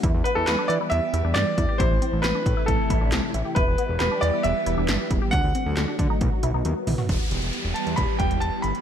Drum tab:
HH |x-x-x-x-x-x-x-x-|x-x-x-x-x-x-x-x-|x-x-x-x-x-x-x-x-|x-x-x-x-x-x-x-o-|
CP |----x-------x---|----x-------x---|----x-------x---|----x-----------|
SD |----o-------o---|----o-------o---|----o-------o---|----o-----------|
T1 |----------------|----------------|----------------|------------o---|
T2 |----------------|----------------|----------------|--------------o-|
FT |----------------|----------------|----------------|---------------o|
BD |o-------------o-|o-----o-o-o-----|o-------------o-|o-----o-o-------|

HH |x-xxx-xxx-xxx-xx|
CP |----------------|
SD |----------------|
T1 |----------------|
T2 |----------------|
FT |----------------|
BD |o-------o-o-----|